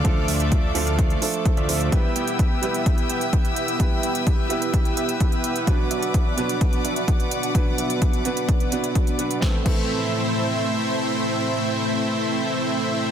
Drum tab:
CC |----------------|----------------|----------------|----------------|
HH |x-oxx-oxxxoxxxox|x-xxx-xxxxxxxxxx|x-xxx-xxxxxxxxxx|x-xxx-xxxxxxxxxx|
SD |----------------|----------------|----------------|----------------|
BD |o---o---o---o---|o---o---o---o---|o---o---o---o---|o---o---o---o---|

CC |----------------|--x-------------|----------------|
HH |x-xxxxxxxxxxxxxx|----------------|----------------|
SD |----------------|o---------------|----------------|
BD |o---o---o---o---|o-o-------------|----------------|